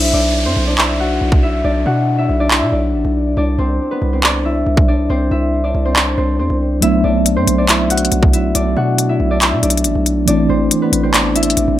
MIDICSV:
0, 0, Header, 1, 7, 480
1, 0, Start_track
1, 0, Tempo, 431655
1, 1828, Time_signature, 4, 2, 24, 8
1, 13116, End_track
2, 0, Start_track
2, 0, Title_t, "Harp"
2, 0, Program_c, 0, 46
2, 0, Note_on_c, 0, 60, 60
2, 0, Note_on_c, 0, 62, 70
2, 0, Note_on_c, 0, 64, 96
2, 0, Note_on_c, 0, 72, 78
2, 0, Note_on_c, 0, 74, 86
2, 0, Note_on_c, 0, 76, 110
2, 145, Note_off_c, 0, 74, 0
2, 149, Note_on_c, 0, 74, 86
2, 155, Note_off_c, 0, 62, 0
2, 159, Note_on_c, 0, 62, 60
2, 504, Note_off_c, 0, 72, 0
2, 508, Note_on_c, 0, 72, 74
2, 513, Note_off_c, 0, 60, 0
2, 517, Note_on_c, 0, 60, 60
2, 744, Note_off_c, 0, 74, 0
2, 748, Note_on_c, 0, 74, 76
2, 753, Note_off_c, 0, 62, 0
2, 758, Note_on_c, 0, 62, 59
2, 865, Note_off_c, 0, 76, 0
2, 870, Note_on_c, 0, 76, 85
2, 874, Note_off_c, 0, 64, 0
2, 879, Note_on_c, 0, 64, 61
2, 1111, Note_on_c, 0, 78, 77
2, 1119, Note_on_c, 0, 66, 62
2, 1586, Note_off_c, 0, 76, 0
2, 1590, Note_on_c, 0, 76, 81
2, 1595, Note_off_c, 0, 64, 0
2, 1600, Note_on_c, 0, 64, 62
2, 1825, Note_off_c, 0, 74, 0
2, 1830, Note_on_c, 0, 74, 95
2, 1835, Note_off_c, 0, 62, 0
2, 1839, Note_on_c, 0, 62, 75
2, 2068, Note_off_c, 0, 78, 0
2, 2073, Note_on_c, 0, 78, 88
2, 2077, Note_off_c, 0, 66, 0
2, 2082, Note_on_c, 0, 66, 60
2, 2424, Note_off_c, 0, 76, 0
2, 2428, Note_on_c, 0, 76, 85
2, 2433, Note_off_c, 0, 64, 0
2, 2438, Note_on_c, 0, 64, 70
2, 2666, Note_off_c, 0, 74, 0
2, 2670, Note_on_c, 0, 74, 83
2, 2675, Note_off_c, 0, 62, 0
2, 2679, Note_on_c, 0, 62, 59
2, 2709, Note_off_c, 0, 72, 0
2, 2787, Note_off_c, 0, 76, 0
2, 2792, Note_on_c, 0, 76, 88
2, 2795, Note_off_c, 0, 64, 0
2, 2800, Note_on_c, 0, 64, 72
2, 3028, Note_off_c, 0, 74, 0
2, 3032, Note_on_c, 0, 74, 74
2, 3037, Note_off_c, 0, 62, 0
2, 3041, Note_on_c, 0, 62, 56
2, 3748, Note_off_c, 0, 74, 0
2, 3753, Note_on_c, 0, 74, 92
2, 3757, Note_off_c, 0, 62, 0
2, 3762, Note_on_c, 0, 62, 73
2, 3853, Note_off_c, 0, 60, 0
2, 3860, Note_off_c, 0, 78, 0
2, 3990, Note_on_c, 0, 72, 81
2, 3999, Note_on_c, 0, 60, 70
2, 4349, Note_on_c, 0, 71, 72
2, 4358, Note_on_c, 0, 59, 59
2, 4416, Note_off_c, 0, 60, 0
2, 4416, Note_off_c, 0, 72, 0
2, 4591, Note_on_c, 0, 72, 72
2, 4600, Note_on_c, 0, 60, 62
2, 4658, Note_off_c, 0, 59, 0
2, 4658, Note_off_c, 0, 71, 0
2, 4705, Note_off_c, 0, 74, 0
2, 4708, Note_off_c, 0, 76, 0
2, 4710, Note_on_c, 0, 74, 90
2, 4714, Note_off_c, 0, 62, 0
2, 4718, Note_on_c, 0, 62, 65
2, 4791, Note_off_c, 0, 66, 0
2, 4950, Note_on_c, 0, 76, 89
2, 4953, Note_off_c, 0, 64, 0
2, 4958, Note_on_c, 0, 64, 68
2, 5425, Note_off_c, 0, 74, 0
2, 5430, Note_on_c, 0, 74, 88
2, 5434, Note_off_c, 0, 62, 0
2, 5438, Note_on_c, 0, 62, 65
2, 5666, Note_off_c, 0, 72, 0
2, 5671, Note_on_c, 0, 72, 102
2, 5676, Note_off_c, 0, 60, 0
2, 5680, Note_on_c, 0, 60, 81
2, 5906, Note_off_c, 0, 76, 0
2, 5910, Note_on_c, 0, 76, 84
2, 5915, Note_off_c, 0, 64, 0
2, 5920, Note_on_c, 0, 64, 64
2, 6266, Note_off_c, 0, 74, 0
2, 6270, Note_on_c, 0, 74, 84
2, 6275, Note_off_c, 0, 62, 0
2, 6280, Note_on_c, 0, 62, 63
2, 6505, Note_off_c, 0, 72, 0
2, 6510, Note_on_c, 0, 72, 81
2, 6514, Note_off_c, 0, 60, 0
2, 6518, Note_on_c, 0, 60, 66
2, 6626, Note_off_c, 0, 74, 0
2, 6630, Note_on_c, 0, 74, 84
2, 6634, Note_off_c, 0, 62, 0
2, 6639, Note_on_c, 0, 62, 72
2, 6867, Note_off_c, 0, 72, 0
2, 6871, Note_on_c, 0, 72, 81
2, 6876, Note_off_c, 0, 60, 0
2, 6880, Note_on_c, 0, 60, 64
2, 7104, Note_off_c, 0, 72, 0
2, 7109, Note_on_c, 0, 72, 84
2, 7113, Note_off_c, 0, 60, 0
2, 7118, Note_on_c, 0, 60, 62
2, 7585, Note_off_c, 0, 76, 0
2, 7589, Note_on_c, 0, 76, 111
2, 7593, Note_off_c, 0, 64, 0
2, 7598, Note_on_c, 0, 64, 85
2, 7826, Note_off_c, 0, 74, 0
2, 7831, Note_on_c, 0, 74, 81
2, 7836, Note_off_c, 0, 62, 0
2, 7840, Note_on_c, 0, 62, 67
2, 8185, Note_off_c, 0, 72, 0
2, 8190, Note_on_c, 0, 72, 89
2, 8194, Note_off_c, 0, 60, 0
2, 8199, Note_on_c, 0, 60, 62
2, 8427, Note_off_c, 0, 74, 0
2, 8431, Note_on_c, 0, 74, 74
2, 8436, Note_off_c, 0, 62, 0
2, 8440, Note_on_c, 0, 62, 59
2, 8547, Note_off_c, 0, 76, 0
2, 8551, Note_on_c, 0, 76, 82
2, 8555, Note_off_c, 0, 64, 0
2, 8560, Note_on_c, 0, 64, 67
2, 8792, Note_on_c, 0, 78, 89
2, 8801, Note_on_c, 0, 66, 69
2, 9266, Note_off_c, 0, 76, 0
2, 9270, Note_on_c, 0, 76, 77
2, 9275, Note_off_c, 0, 64, 0
2, 9279, Note_on_c, 0, 64, 58
2, 9505, Note_off_c, 0, 74, 0
2, 9509, Note_on_c, 0, 74, 91
2, 9513, Note_off_c, 0, 62, 0
2, 9517, Note_on_c, 0, 62, 74
2, 9747, Note_off_c, 0, 78, 0
2, 9751, Note_on_c, 0, 78, 84
2, 9755, Note_off_c, 0, 66, 0
2, 9760, Note_on_c, 0, 66, 68
2, 10106, Note_off_c, 0, 76, 0
2, 10111, Note_on_c, 0, 76, 84
2, 10116, Note_off_c, 0, 64, 0
2, 10120, Note_on_c, 0, 64, 65
2, 10346, Note_off_c, 0, 74, 0
2, 10351, Note_on_c, 0, 74, 83
2, 10355, Note_off_c, 0, 62, 0
2, 10360, Note_on_c, 0, 62, 65
2, 10391, Note_off_c, 0, 72, 0
2, 10466, Note_off_c, 0, 76, 0
2, 10471, Note_on_c, 0, 76, 89
2, 10475, Note_off_c, 0, 64, 0
2, 10480, Note_on_c, 0, 64, 66
2, 10706, Note_off_c, 0, 74, 0
2, 10710, Note_on_c, 0, 74, 77
2, 10715, Note_off_c, 0, 62, 0
2, 10719, Note_on_c, 0, 62, 59
2, 11426, Note_off_c, 0, 74, 0
2, 11430, Note_on_c, 0, 74, 103
2, 11435, Note_off_c, 0, 62, 0
2, 11439, Note_on_c, 0, 62, 72
2, 11535, Note_off_c, 0, 60, 0
2, 11539, Note_off_c, 0, 78, 0
2, 11671, Note_on_c, 0, 72, 83
2, 11680, Note_on_c, 0, 60, 62
2, 12031, Note_on_c, 0, 71, 73
2, 12039, Note_on_c, 0, 59, 59
2, 12098, Note_off_c, 0, 60, 0
2, 12098, Note_off_c, 0, 72, 0
2, 12269, Note_on_c, 0, 72, 82
2, 12278, Note_on_c, 0, 60, 60
2, 12336, Note_off_c, 0, 59, 0
2, 12336, Note_off_c, 0, 71, 0
2, 12383, Note_off_c, 0, 74, 0
2, 12387, Note_off_c, 0, 76, 0
2, 12387, Note_on_c, 0, 74, 91
2, 12391, Note_off_c, 0, 62, 0
2, 12395, Note_on_c, 0, 62, 73
2, 12469, Note_off_c, 0, 66, 0
2, 12629, Note_on_c, 0, 76, 83
2, 12634, Note_off_c, 0, 64, 0
2, 12639, Note_on_c, 0, 64, 66
2, 13105, Note_off_c, 0, 74, 0
2, 13114, Note_off_c, 0, 62, 0
2, 13116, Note_off_c, 0, 60, 0
2, 13116, Note_off_c, 0, 64, 0
2, 13116, Note_off_c, 0, 72, 0
2, 13116, Note_off_c, 0, 76, 0
2, 13116, End_track
3, 0, Start_track
3, 0, Title_t, "Tine electric piano"
3, 0, Program_c, 1, 4
3, 7569, Note_on_c, 1, 54, 64
3, 7584, Note_on_c, 1, 57, 66
3, 7600, Note_on_c, 1, 59, 65
3, 7615, Note_on_c, 1, 62, 72
3, 7817, Control_c, 1, 64, 127
3, 11374, Note_off_c, 1, 54, 0
3, 11382, Note_off_c, 1, 57, 0
3, 11390, Note_off_c, 1, 59, 0
3, 11397, Note_off_c, 1, 62, 0
3, 11404, Note_on_c, 1, 52, 66
3, 11420, Note_on_c, 1, 57, 63
3, 11435, Note_on_c, 1, 60, 66
3, 11443, Control_c, 1, 64, 0
3, 11450, Note_on_c, 1, 64, 74
3, 11662, Control_c, 1, 64, 127
3, 13116, Note_off_c, 1, 52, 0
3, 13116, Note_off_c, 1, 57, 0
3, 13116, Note_off_c, 1, 60, 0
3, 13116, Note_off_c, 1, 64, 0
3, 13116, End_track
4, 0, Start_track
4, 0, Title_t, "808-style bass"
4, 0, Program_c, 2, 38
4, 0, Note_on_c, 2, 35, 109
4, 139, Note_off_c, 2, 35, 0
4, 149, Note_on_c, 2, 35, 106
4, 509, Note_on_c, 2, 42, 93
4, 525, Note_off_c, 2, 35, 0
4, 623, Note_off_c, 2, 42, 0
4, 629, Note_on_c, 2, 35, 106
4, 1320, Note_off_c, 2, 35, 0
4, 1349, Note_on_c, 2, 35, 106
4, 1809, Note_off_c, 2, 35, 0
4, 1828, Note_on_c, 2, 35, 111
4, 2059, Note_off_c, 2, 35, 0
4, 2068, Note_on_c, 2, 47, 102
4, 2529, Note_off_c, 2, 47, 0
4, 2548, Note_on_c, 2, 35, 108
4, 2908, Note_on_c, 2, 47, 99
4, 2924, Note_off_c, 2, 35, 0
4, 3022, Note_off_c, 2, 47, 0
4, 3027, Note_on_c, 2, 35, 112
4, 3267, Note_on_c, 2, 33, 105
4, 3284, Note_off_c, 2, 35, 0
4, 3382, Note_off_c, 2, 33, 0
4, 3388, Note_on_c, 2, 35, 104
4, 3734, Note_off_c, 2, 35, 0
4, 3747, Note_on_c, 2, 36, 112
4, 3978, Note_off_c, 2, 36, 0
4, 3987, Note_on_c, 2, 36, 105
4, 4218, Note_off_c, 2, 36, 0
4, 4468, Note_on_c, 2, 36, 108
4, 5159, Note_off_c, 2, 36, 0
4, 5188, Note_on_c, 2, 36, 110
4, 5649, Note_off_c, 2, 36, 0
4, 5668, Note_on_c, 2, 36, 110
4, 5898, Note_off_c, 2, 36, 0
4, 5907, Note_on_c, 2, 36, 103
4, 6369, Note_off_c, 2, 36, 0
4, 6389, Note_on_c, 2, 36, 110
4, 6850, Note_off_c, 2, 36, 0
4, 6868, Note_on_c, 2, 36, 114
4, 7108, Note_on_c, 2, 40, 103
4, 7125, Note_off_c, 2, 36, 0
4, 7222, Note_off_c, 2, 40, 0
4, 7228, Note_on_c, 2, 36, 105
4, 7574, Note_off_c, 2, 36, 0
4, 7587, Note_on_c, 2, 35, 107
4, 7818, Note_off_c, 2, 35, 0
4, 7828, Note_on_c, 2, 35, 104
4, 8188, Note_on_c, 2, 42, 97
4, 8205, Note_off_c, 2, 35, 0
4, 8302, Note_off_c, 2, 42, 0
4, 8307, Note_on_c, 2, 35, 103
4, 8999, Note_off_c, 2, 35, 0
4, 9028, Note_on_c, 2, 35, 113
4, 9489, Note_off_c, 2, 35, 0
4, 9507, Note_on_c, 2, 35, 108
4, 9738, Note_off_c, 2, 35, 0
4, 9747, Note_on_c, 2, 47, 99
4, 10209, Note_off_c, 2, 47, 0
4, 10228, Note_on_c, 2, 35, 111
4, 10589, Note_on_c, 2, 47, 102
4, 10606, Note_off_c, 2, 35, 0
4, 10703, Note_off_c, 2, 47, 0
4, 10708, Note_on_c, 2, 35, 112
4, 10948, Note_on_c, 2, 33, 101
4, 10965, Note_off_c, 2, 35, 0
4, 11062, Note_off_c, 2, 33, 0
4, 11068, Note_on_c, 2, 35, 103
4, 11414, Note_off_c, 2, 35, 0
4, 11428, Note_on_c, 2, 33, 113
4, 11659, Note_off_c, 2, 33, 0
4, 11668, Note_on_c, 2, 33, 105
4, 11898, Note_off_c, 2, 33, 0
4, 12147, Note_on_c, 2, 33, 107
4, 12839, Note_off_c, 2, 33, 0
4, 12867, Note_on_c, 2, 33, 109
4, 12983, Note_off_c, 2, 33, 0
4, 12988, Note_on_c, 2, 33, 105
4, 13116, Note_off_c, 2, 33, 0
4, 13116, End_track
5, 0, Start_track
5, 0, Title_t, "Downlifter"
5, 0, Program_c, 3, 103
5, 0, Note_on_c, 3, 60, 84
5, 3749, Note_off_c, 3, 60, 0
5, 13116, End_track
6, 0, Start_track
6, 0, Title_t, "Swell"
6, 0, Program_c, 4, 103
6, 11429, Note_on_c, 4, 60, 85
6, 13116, Note_off_c, 4, 60, 0
6, 13116, End_track
7, 0, Start_track
7, 0, Title_t, "Drums"
7, 869, Note_on_c, 9, 39, 116
7, 980, Note_off_c, 9, 39, 0
7, 1467, Note_on_c, 9, 36, 91
7, 1578, Note_off_c, 9, 36, 0
7, 2789, Note_on_c, 9, 39, 116
7, 2900, Note_off_c, 9, 39, 0
7, 4709, Note_on_c, 9, 39, 115
7, 4820, Note_off_c, 9, 39, 0
7, 5308, Note_on_c, 9, 36, 90
7, 5419, Note_off_c, 9, 36, 0
7, 6629, Note_on_c, 9, 39, 111
7, 6740, Note_off_c, 9, 39, 0
7, 7587, Note_on_c, 9, 42, 91
7, 7699, Note_off_c, 9, 42, 0
7, 8071, Note_on_c, 9, 42, 81
7, 8182, Note_off_c, 9, 42, 0
7, 8312, Note_on_c, 9, 42, 73
7, 8424, Note_off_c, 9, 42, 0
7, 8548, Note_on_c, 9, 39, 114
7, 8550, Note_on_c, 9, 42, 84
7, 8660, Note_off_c, 9, 39, 0
7, 8662, Note_off_c, 9, 42, 0
7, 8788, Note_on_c, 9, 42, 71
7, 8869, Note_off_c, 9, 42, 0
7, 8869, Note_on_c, 9, 42, 71
7, 8949, Note_off_c, 9, 42, 0
7, 8949, Note_on_c, 9, 42, 67
7, 9025, Note_off_c, 9, 42, 0
7, 9025, Note_on_c, 9, 42, 67
7, 9137, Note_off_c, 9, 42, 0
7, 9147, Note_on_c, 9, 36, 93
7, 9259, Note_off_c, 9, 36, 0
7, 9268, Note_on_c, 9, 42, 73
7, 9379, Note_off_c, 9, 42, 0
7, 9508, Note_on_c, 9, 42, 90
7, 9619, Note_off_c, 9, 42, 0
7, 9991, Note_on_c, 9, 42, 83
7, 10102, Note_off_c, 9, 42, 0
7, 10469, Note_on_c, 9, 39, 113
7, 10471, Note_on_c, 9, 42, 77
7, 10581, Note_off_c, 9, 39, 0
7, 10583, Note_off_c, 9, 42, 0
7, 10708, Note_on_c, 9, 42, 70
7, 10789, Note_off_c, 9, 42, 0
7, 10789, Note_on_c, 9, 42, 74
7, 10869, Note_off_c, 9, 42, 0
7, 10869, Note_on_c, 9, 42, 68
7, 10946, Note_off_c, 9, 42, 0
7, 10946, Note_on_c, 9, 42, 69
7, 11057, Note_off_c, 9, 42, 0
7, 11188, Note_on_c, 9, 42, 73
7, 11299, Note_off_c, 9, 42, 0
7, 11427, Note_on_c, 9, 42, 89
7, 11538, Note_off_c, 9, 42, 0
7, 11911, Note_on_c, 9, 42, 81
7, 12022, Note_off_c, 9, 42, 0
7, 12152, Note_on_c, 9, 42, 73
7, 12263, Note_off_c, 9, 42, 0
7, 12388, Note_on_c, 9, 39, 118
7, 12390, Note_on_c, 9, 42, 80
7, 12499, Note_off_c, 9, 39, 0
7, 12501, Note_off_c, 9, 42, 0
7, 12628, Note_on_c, 9, 42, 71
7, 12708, Note_off_c, 9, 42, 0
7, 12708, Note_on_c, 9, 42, 69
7, 12788, Note_off_c, 9, 42, 0
7, 12788, Note_on_c, 9, 42, 69
7, 12865, Note_off_c, 9, 42, 0
7, 12865, Note_on_c, 9, 42, 68
7, 12977, Note_off_c, 9, 42, 0
7, 13116, End_track
0, 0, End_of_file